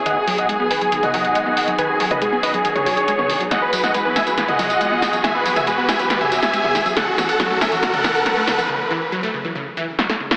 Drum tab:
HH |x-oxx-oxxxoxx-ox|x-oxx-oxxxoxx-ox|x-oxx-oxxxoxx-ox|x-oxx-oxxxoxx-ox|
TB |----------------|----------------|x-xxx-xxx-xxx-xx|x-xxx-xxx-xxx-xx|
SD |----------------|----------------|o--o--o-o-----o-|o-----o-o--o--o-|
T2 |---------oo-----|---o-----o---o--|---------oo-----|---o-----o---o--|

HH |x-oxx-oxxxoxx-ox|----------------|
TB |x-xxx-xxx-xxx-xx|----------------|
SD |o-o-o-o-o-o-o-o-|------------oo-o|
T2 |---------oo-----|----------------|